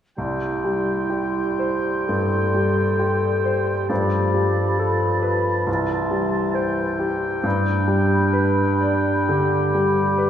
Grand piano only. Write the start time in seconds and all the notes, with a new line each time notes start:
0.18 C2
0.65 G3
1.10 G4
1.59 C5
2.09 G2
2.55 G3
2.99 G4
3.45 C5
3.90 G2
4.34 G3
4.79 A4
5.22 B4
5.67 C2
6.11 G3
6.54 C5
6.99 G4
7.43 G2
7.88 G3
8.33 B4
8.81 D5
9.29 D3
9.75 G3
10.18 B4